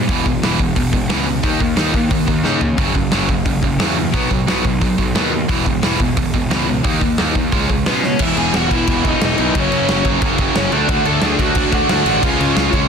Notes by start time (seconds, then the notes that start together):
0.08 E1 E2 B2 E3, kick, open hi-hat
0.26 E1 E2 B2, kick
0.42 E1 E2 B2 E3, snare, open hi-hat
0.59 E1 E2 B2, kick
0.75 E1 E2 B2, kick, open hi-hat
0.91 E1 E2 B2, kick
1.09 C#2 E2 B2 E3, snare, open hi-hat
1.26 E2 B2
1.43 D#2 D#3 A#3 D#4, kick, open hi-hat
1.60 D#2 D#3 A#3, kick
1.76 D#2 D#3 A#3 D#4, snare, open hi-hat
1.93 D#2 D#3 A#3, kick
2.09 D#2 D#3 A#3, kick, open hi-hat
2.26 D#2 D#3 A#3, kick
2.43 C#3 D#3 A#3 D#4, snare
2.60 D#3 A#3, floor tom
2.77 F#1 F#2 C#3 F#3, kick, open hi-hat
2.95 F#1 F#2 C#3, kick
3.11 F#1 F#2 C#3 F#3, snare, open hi-hat
3.28 F#1 F#2 C#3, kick
3.45 F#1 F#2 C#3, kick, open hi-hat
3.61 F#1 F#2 C#3, kick
3.79 E2 F#2 C#3 F#3, snare, open hi-hat
3.97 F#2 C#3
4.12 B1 B2 F#3 B3, kick, open hi-hat
4.30 B1 B2 F#3, kick
4.47 B1 B2 F#3 B3, snare, open hi-hat
4.64 B1 B2 F#3, kick
4.81 B1 B2 F#3, kick, open hi-hat
4.98 B1 B2 F#3, kick
5.14 D#2 B2 F#3 B3, snare, open hi-hat
5.32 B2 F#3
5.49 E1 E2 B2 E3, kick, open hi-hat
5.64 E1 E2 B2, kick
5.82 E1 E2 B2 E3, snare, open hi-hat
6.00 E1 E2 B2, kick
6.17 E1 E2 B2, kick, open hi-hat
6.33 E1 E2 B2, kick
6.50 C#2 E2 B2 E3, snare, open hi-hat
6.67 E2 B2
6.83 D#2 D#3 A#3 D#4, kick, open hi-hat
7.01 D#2 D#3 A#3, kick
7.18 D#2 D#3 A#3 D#4, snare, open hi-hat
7.35 D#2 D#3 A#3, kick
7.52 C#2 C#3 G#3 C#4, kick, open hi-hat
7.70 C#2 C#3 G#3, kick
7.86 B2 C#3 G#3 B3 C#4 B4, snare, open hi-hat
8.03 C#3 G#3 C#4 C#5, snare
8.19 E1 E2 B2 E3 E4 E5, kick, crash
8.36 E1 E2 B2 E3 G#4 G#5, crash
8.53 E1 E2 B2 E3 F#4 F#5, snare, crash
8.71 E1 E2 B2 E3 E4 E5, kick, crash
8.87 E1 E2 B2 E3, kick, crash
9.03 E2 B2 E3 D#4, kick, crash
9.09 D#5
9.21 E1 E2 B2 E3 D#4 D#5, snare, crash
9.38 B1 E2 B2 E3, crash
9.55 F#1 F#2 C#3 F#3 C#4, kick, crash
9.59 C#5
9.72 F#1 F#2 C#3 F#3, crash
9.89 F#1 F#2 C#3 F#3, snare, crash
10.05 F#1 F#2 C#3 F#3, kick, crash
10.22 F#1 F#2 C#3 F#3, kick, crash
10.38 F#2 C#3 F#3, kick, crash
10.56 F#1 F#2 C#3 F#3 C#4 C#5, snare, crash
10.72 D2 D3 A3 D4 D5, crash
10.88 D2 D3 A3 D4 F#4 F#5, kick, crash
11.05 D2 D3 A3 D4 A4 A5, crash
11.21 D2 D3 A3 D4 G#4 G#5, snare, crash
11.39 D2 D3 A3 D4 F#4 F#5, kick, crash
11.54 D2 D3 A3 D4, kick, crash
11.71 D3 A3 D4 F#4 F#5, kick, crash
11.88 D2 D3 A3 D4 F#4 F#5, snare, crash
12.05 A1 D3 A3 D4, crash
12.22 C#2 C#3 G#3 C#4 F4 F5, kick, crash
12.38 C#2 C#3 G#3 C#4, crash
12.54 C#2 C#3 G#3 C#4, snare, crash
12.71 C#2 C#3 G#3 C#4, kick, crash